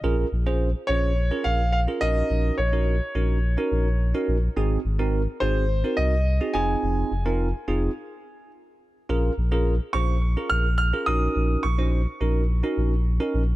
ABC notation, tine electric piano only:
X:1
M:4/4
L:1/16
Q:1/4=106
K:Bbm
V:1 name="Tine electric piano"
[DFAB]2 z [DFAc]2 z [DFAc]2 z [DFAB]2 z2 [DFAB] [DEGB]2- | [DEGB]2 z [DEGB]2 z [DEGB]2 z [DEGB]2 z2 [DEGB]2 z | [CEGA]2 z [CEGB]2 z [CEGA]2 z [CEGB]2 z2 [CEGA] [CEFA]2- | [CEFA]2 z [CEFB]2 z [CEFA]2 z8 |
[DFAB]2 z [DFAB]2 z [DFAc]2 z [DFAB]2 z2 [DFAB] [DEGB]2- | [DEGB]2 z [DEGc]2 z [DEGB]2 z [DEGB]2 z2 [DEGB]2 z |]